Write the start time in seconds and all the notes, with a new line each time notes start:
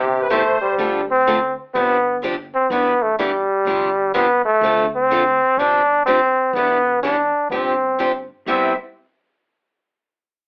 Already playing: G1 C3 G4
0.22 B4
0.30 C3 G3 A3 B3 E4 G4 C5
0.61 G3
0.78 D2 D3 F3 A3 C4 D4 F4 A4
1.11 C4
1.27 D3 F3 A3 C4 D4 F4 A4
1.74 G1 C3 F3 B3 C4 D4 G4
2.22 C3 F3 C4 D4 G4
2.55 C4
2.70 E1 E3 G3 B3 D4 E4 G4 B4
3.02 A3
3.19 E3 G3 B3 D4 E4 G4 B4
3.65 G1 C3 F3 C4 D4 G4
4.14 C3 F3 B3 C4 D4 G4
4.45 A3
4.61 D2 D3 F3 A3 C4 D4 F4 A4
4.95 C4
5.10 D3 F3 A3 C4 D4 F4 A4
5.57 G1 C3 F3 C4 D4 G4
6.06 C3 F3 C4 D4 G4
6.53 E1 E3 G3 B3 D4 G4 B4
6.57 E4
7.03 E3 G3 B3 D4 E4 G4 B4
7.50 G1 C3 F3 C4 D4 G4
7.99 C3 F3 C4 D4 G4
8.46 C2 C3 G3 B3 C4 E4 G4 E5